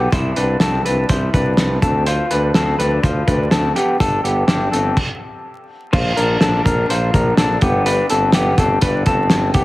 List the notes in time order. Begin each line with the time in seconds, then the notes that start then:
Already playing: B3 G4
0.12 C2 E4 C5, kick, closed hi-hat
0.36 C2 D4 B4, closed hi-hat
0.60 C2 C4 A4, snare, closed hi-hat
0.85 C2 D4 B4, closed hi-hat
1.09 C2 E4 C5, kick, closed hi-hat
1.34 C2 D4 B4, kick, closed hi-hat
1.57 C2, snare, closed hi-hat
1.82 D2 C4 A4, kick, closed hi-hat
2.06 F4 C5, closed hi-hat
2.31 D2 D4 B4, closed hi-hat
2.54 D2 C4 A4, snare, closed hi-hat
2.79 D2 D4 B4, closed hi-hat
3.03 D2 F4 C5, kick, closed hi-hat
3.27 D2 D4 B4, kick, closed hi-hat
3.51 D2 C4 A4, snare, closed hi-hat
3.76 B3 G4, closed hi-hat
4.00 G1 D4 A4, kick, closed hi-hat
4.24 G1 B3 G4, closed hi-hat
4.48 G1 D4 G4, snare, closed hi-hat
4.72 G1 C4 A4, closed hi-hat
4.97 kick, crash
5.93 A#1 F4 C5, kick, crash
6.17 A#1 D4 A#4, closed hi-hat
6.41 A#1 D4 A4, snare, closed hi-hat
6.65 A#1 D4 A#4, kick, closed hi-hat
6.89 A#1 F4 C5, closed hi-hat
7.14 A#1 D4 A#4, kick, closed hi-hat
7.37 A#1 D4 A4, snare, closed hi-hat
7.61 G1 B3 G4, kick, closed hi-hat
7.86 D4 B4, closed hi-hat
8.10 G1 C4 A4, closed hi-hat
8.32 G1 B3 G4, snare, closed hi-hat
8.58 G1 C4 A4, kick, closed hi-hat
8.81 G1 D4 B4, kick, closed hi-hat
9.06 G1 C4 A4, kick, closed hi-hat
9.30 G1, snare, closed hi-hat
9.54 C2 B3 G4, kick, closed hi-hat